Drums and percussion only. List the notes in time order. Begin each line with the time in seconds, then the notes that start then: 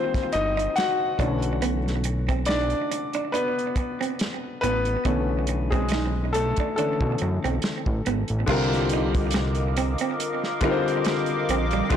0.14 kick, snare, closed hi-hat
0.32 closed hi-hat
0.59 closed hi-hat
0.76 snare, closed hi-hat
1.19 kick, closed hi-hat
1.42 closed hi-hat
1.62 closed hi-hat
1.88 snare, closed hi-hat
2.04 closed hi-hat
2.29 kick, closed hi-hat
2.45 snare, closed hi-hat
2.70 closed hi-hat
2.91 closed hi-hat
3.13 closed hi-hat
3.35 closed hi-hat
3.59 closed hi-hat
3.76 kick, closed hi-hat
4.03 closed hi-hat
4.19 snare, closed hi-hat
4.64 closed hi-hat
4.85 closed hi-hat
5.05 kick, closed hi-hat
5.47 closed hi-hat
5.72 kick, closed hi-hat
5.89 snare, closed hi-hat
6.34 closed hi-hat
6.56 kick, closed hi-hat
6.78 closed hi-hat
7.01 kick
7.18 closed hi-hat
7.45 closed hi-hat
7.62 snare, closed hi-hat
7.86 kick
8.06 closed hi-hat
8.28 closed hi-hat
8.47 kick, crash
8.73 snare, closed hi-hat
8.89 closed hi-hat
9.15 kick, closed hi-hat
9.31 snare, closed hi-hat
9.55 closed hi-hat
9.77 closed hi-hat
9.98 closed hi-hat
10.20 closed hi-hat
10.44 snare
10.61 kick, closed hi-hat
10.88 closed hi-hat
11.05 snare, closed hi-hat
11.26 closed hi-hat
11.49 closed hi-hat
11.71 closed hi-hat
11.90 kick, closed hi-hat